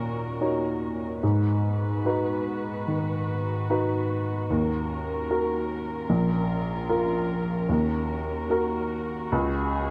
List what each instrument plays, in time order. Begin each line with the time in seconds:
Already playing: grand piano A#2 D#4 F#4 C#5, string section C#4 F#4 A#4
0.41 grand piano D#4 F#4 C#5
1.23 grand piano G#2, string section B3 F#4 B4
2.05 grand piano D#4 F#4 B4
2.88 grand piano D#3
3.70 grand piano D#4 F#4 B4
4.50 grand piano D#2, string section C#4 A#4
5.30 grand piano F#4 A#4
6.09 grand piano A#1, string section F4
6.89 grand piano F4 A#4
7.67 grand piano D#2, string section F#4
8.50 grand piano F#4 A#4
9.32 grand piano C#2, string section C#4 G#4